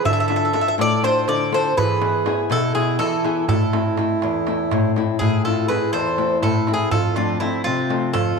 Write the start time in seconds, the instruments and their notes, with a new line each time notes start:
0.05 nylon-string guitar D3, accordion A4, bouzouki E5, darbuka dum
0.13 bouzouki E5
0.18 bouzouki E5, darbuka tek
0.28 nylon-string guitar D4 F4 A4, bouzouki E5, darbuka tek
0.36 bouzouki E5
0.45 bouzouki E5
0.53 nylon-string guitar D4 F4 A4, bouzouki E5, darbuka tek
0.61 bouzouki E5
0.68 bouzouki E5
0.78 nylon-string guitar A2, accordion A4, bouzouki D5, darbuka tek
1.03 nylon-string guitar D4 F4 A4, accordion A4, bouzouki C5, darbuka tek
1.28 nylon-string guitar D3, accordion A4, bouzouki D5, darbuka tek
1.52 nylon-string guitar D4 F4 A4, accordion A4, bouzouki C5, darbuka tek
1.65 darbuka tek
1.77 nylon-string guitar E3, accordion G#4, bouzouki B4, darbuka dum
1.90 darbuka tek
2.01 nylon-string guitar B3 E4 G#4, darbuka tek
2.26 nylon-string guitar B3 E4 G#4, darbuka tek
2.50 nylon-string guitar B2, accordion E4, bouzouki A4, darbuka tek
2.74 nylon-string guitar B3 E4 G#4, accordion E4, bouzouki G#4, darbuka tek
2.99 nylon-string guitar E3, accordion E4, bouzouki A4, darbuka tek
3.24 nylon-string guitar B3 E4 G#4, darbuka tek
3.37 darbuka tek
3.48 nylon-string guitar A2, accordion E4, bouzouki A4, darbuka dum
3.61 darbuka tek
3.73 nylon-string guitar A3 C4 E4, darbuka tek
3.86 darbuka tek
3.97 nylon-string guitar A3 C4 E4, darbuka tek
4.10 darbuka tek
4.22 nylon-string guitar E2, darbuka tek
4.47 nylon-string guitar A3 C4 E4, darbuka tek
4.71 nylon-string guitar A2, darbuka tek, darbuka dum
4.84 darbuka tek
4.96 nylon-string guitar A3 C4 E4, darbuka tek
5.09 darbuka tek
5.19 nylon-string guitar A2, accordion E4, bouzouki G#4, darbuka dum
5.44 nylon-string guitar A3 C4 E4, accordion F4, bouzouki A4, darbuka tek
5.67 nylon-string guitar A3 C4 E4, accordion G#4, bouzouki B4, darbuka tek
5.82 darbuka tek
5.91 nylon-string guitar E2, accordion A4, bouzouki C5, darbuka tek
6.18 nylon-string guitar A3 C4 E4, darbuka tek
6.41 nylon-string guitar A2, accordion E4, bouzouki A4, darbuka tek, darbuka dum
6.67 nylon-string guitar A3 C4 E4, darbuka tek
6.74 accordion E4, bouzouki G#4
6.91 nylon-string guitar F2, accordion F4, bouzouki A4, darbuka dum
7.16 nylon-string guitar F3 A3 C4, accordion D4, bouzouki F4, darbuka tek
7.29 darbuka tek
7.40 nylon-string guitar F3 A3 C4, accordion C4, bouzouki E4, darbuka tek
7.53 darbuka tek
7.63 nylon-string guitar C3, accordion C4, bouzouki F4, darbuka tek
7.89 nylon-string guitar F3 A3 C4, darbuka tek
8.13 nylon-string guitar F2, accordion F4, bouzouki A4, darbuka tek, darbuka dum